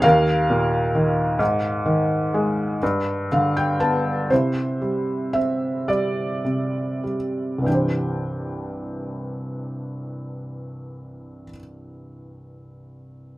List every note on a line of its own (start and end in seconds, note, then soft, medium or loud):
0.02 1.36 D#2 medium
0.02 3.27 A#4 medium
0.02 3.26 F5 loud
0.50 1.38 A#2 medium
0.95 1.39 D#3 medium
1.39 2.77 G#2 medium
1.86 2.78 D#3 medium
2.34 2.80 G#3 medium
2.83 4.28 G2 medium
3.32 4.29 D3 medium
3.32 3.54 F5 medium
3.57 3.79 G5 medium
3.80 4.29 B3 medium
3.80 4.27 A5 medium
4.30 6.43 C3 soft
4.30 5.85 E4 soft
4.30 5.38 C5 medium
4.82 5.87 G3 soft
5.33 7.62 C4 soft
5.33 5.89 E5 medium
5.88 7.02 G3 soft
5.88 7.15 D5 medium
6.45 7.63 C3 soft
7.04 7.65 G3 soft
7.58 11.41 C2 soft
7.58 11.45 G2 soft
7.65 11.48 E3 soft
7.65 11.51 D4 soft
7.65 11.49 G5 soft
7.71 11.54 G4 soft
7.71 11.57 C5 soft